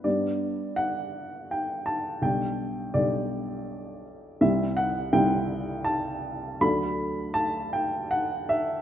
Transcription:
X:1
M:3/4
L:1/8
Q:1/4=82
K:G
V:1 name="Upright piano"
d2 f2 g a | g2 d3 z | e f g2 a2 | b2 a g f e |]
V:2 name="Upright piano" clef=bass
[G,,G,B,D]6 | [B,,,G,D]2 [B,,,G,D]4 | [C,,G,CE]2 [C,,G,CE]4 | [D,,F,A,D]6 |]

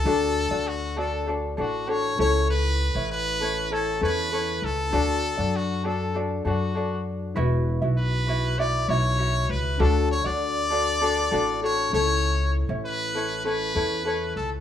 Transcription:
X:1
M:4/4
L:1/16
Q:1/4=99
K:D
V:1 name="Trumpet"
A4 F2 A2 z2 F2 c2 c2 | B4 B4 A2 B4 A2- | A4 F2 A2 z2 F4 z2 | z4 B4 d2 c4 B2 |
A2 c d8- d c2 c2- | c2 z2 B4 B6 A2 |]
V:2 name="Reed electric piano"
[DFA]12- [DFA]2 [CEA]2- | [CEA]8- [CEA]2 [CEB]6 | [DFA]16 | [EFB]16 |
[DFA]12- [DFA]2 [CEA]2- | [CEA]12- [CEA]2 z2 |]
V:3 name="Ukulele"
[DFAd]3 [DFd]3 [DFAd]2 [DFAd]2 [DFAd]2 [DFA]2 [CEAc]2- | [CEAc]3 [CEc]3 [CEAc]2 [CEAc]2 [CEAc]2 [CEAc]4 | [DFAd]3 [DFd]3 [DFAd]2 [DFAd]2 [DFAd]2 [DFAd]4 | [EFBe]3 [EFe]3 [EFBe]2 [EFBe]2 [EFBe]2 [EFBe]4 |
[DFAd]3 [DFd]3 [DFAd]2 [DFAd]2 [DFAd]2 [DFA]2 [CEAc]2- | [CEAc]3 [CEc]3 [CEAc]2 [CEAc]2 [CEAc]2 [CEAc]4 |]
V:4 name="Upright bass" clef=bass
D,,3 D,,6- D,, A,,,4 C,,2- | C,,3 A,,,6- A,,, E,,4 C,,2 | D,,3 F,,6- F,, F,,6 | E,,,3 B,,,6- B,,, B,,,4 C,,2 |
D,,3 D,,6- D,, A,,,4 C,,2- | C,,3 A,,,6- A,,, E,,4 C,,2 |]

